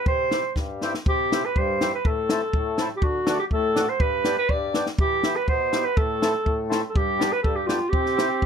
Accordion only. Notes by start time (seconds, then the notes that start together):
0.06 C3
0.32 C4 E4 G4
0.55 G2
0.82 C4 E4 G4
1.07 C3
1.32 C4 E4 G4
1.57 G2
1.81 C4 E4 G4
2.06 A2
2.31 C4 E4 A4
2.55 A2
2.79 C4 E4 A4
3.02 D3
3.28 A3 D4 F#4
3.52 A2
3.75 A3 D4 F#4
3.99 G2
4.25 B3 D4 G4
4.50 G2
4.74 B3 D4 G4
5.00 E3
5.24 B3 E4 G4
5.48 B2
5.73 B3 E4 G4
5.98 A2
6.22 C4 E4 A4
6.45 A2
6.70 C4 E4 A4
6.94 G2
7.19 B3 D4 G4
7.44 G2
7.68 B3 D4 G4
7.93 C3
8.16 C4 E4 G4
8.42 G2